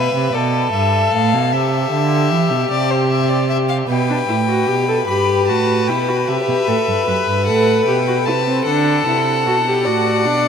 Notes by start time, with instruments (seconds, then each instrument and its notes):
Already playing: cello B2, violin B4 E5
0.14 cello C3
0.33 cello B2, violin A4 D5
0.72 cello G2, violin E5
1.12 cello A2, violin F5
1.33 cello B2
1.52 cello C3, violin G4 E5
1.92 cello D3
2.31 cello E3
2.51 cello B2
2.71 cello C3, violin D5
2.91 violin C5
3.09 violin E5
3.29 violin D5
3.50 violin E5
3.69 violin F5
3.89 cello B2, violin B4 G5
4.10 viola D4
4.29 cello A2, viola E4
4.48 viola F#4
4.68 cello B2, viola G4
4.88 viola A4
5.08 cello G2, viola G4, violin B5
5.48 cello A2, viola F#4, violin A5
5.87 cello B2, viola E4, violin G5
6.09 viola F#4
6.28 cello C3, viola G4, violin E5
6.48 cello B2
6.67 cello A2, viola A4
6.88 cello G2
7.07 cello F#2, viola B4
7.27 cello G2
7.46 cello A2, viola A4, violin F#5
7.85 cello B2, viola G4, violin G5
8.08 viola F#4
8.26 cello C3, viola E4, violin A5
8.48 viola C4
8.66 cello D3, viola D4, violin A4 F#5
9.07 cello C3, viola E4
9.46 cello B2, viola F#4
9.67 viola G4
9.85 cello A2, viola F#4, violin D5
10.25 cello B2, viola D4